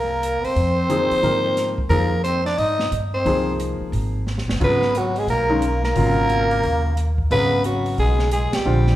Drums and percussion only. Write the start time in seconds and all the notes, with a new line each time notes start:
0.23 closed hi-hat
0.45 open hi-hat
0.56 open hi-hat
0.90 closed hi-hat
1.11 open hi-hat
1.23 open hi-hat
1.57 snare, closed hi-hat
1.78 kick
1.91 open hi-hat
2.24 closed hi-hat
2.46 snare, open hi-hat
2.58 open hi-hat
2.79 snare
2.92 closed hi-hat
3.26 open hi-hat
3.60 closed hi-hat
3.93 open hi-hat
4.27 snare
4.38 snare
4.49 snare
4.61 kick, crash
4.82 snare
4.95 closed hi-hat
5.16 open hi-hat
5.28 open hi-hat
5.62 closed hi-hat
5.83 snare
5.96 open hi-hat
6.30 closed hi-hat
6.51 open hi-hat
6.63 open hi-hat
6.97 closed hi-hat
7.18 kick
7.31 open hi-hat
7.64 closed hi-hat
7.86 open hi-hat
7.98 open hi-hat
8.19 snare
8.31 closed hi-hat
8.53 snare, ride
8.87 snare